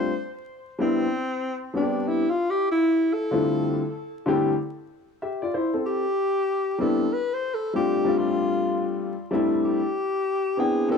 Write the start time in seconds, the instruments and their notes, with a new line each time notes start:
Already playing: upright piano F4, alto saxophone C5
0.78 upright piano G3 B3 C4 D4 E4, alto saxophone C4
1.74 upright piano G3 B3 C4 D4 F#4, alto saxophone D4
1.82 upright piano G4
2.08 alto saxophone E4
2.30 alto saxophone F4
2.50 alto saxophone G4
2.71 alto saxophone E4
3.13 alto saxophone A4
3.31 upright piano D3 G3 A3 C4 E4 F4
4.26 upright piano D3 G3 A3 C4 E4 G4
5.22 upright piano G4 E5
5.42 upright piano F4 D5
5.54 upright piano E4 C5
5.73 upright piano C4 A4
5.86 alto saxophone G4
6.78 upright piano G3 B3 C4 D4 E4, alto saxophone A4
7.13 alto saxophone B4
7.33 alto saxophone C5
7.54 alto saxophone A4
7.73 upright piano G3 A3 C4 D4 F4, alto saxophone G4
8.05 upright piano G3 A3 C4 D4 F4
8.18 alto saxophone F4
9.31 upright piano G3 A3 C4 D4 E4
9.65 alto saxophone G4
10.57 upright piano B3 C4 D4 E4 G5, alto saxophone G#4
10.88 upright piano B3 C4 D4 E4 G4, alto saxophone A4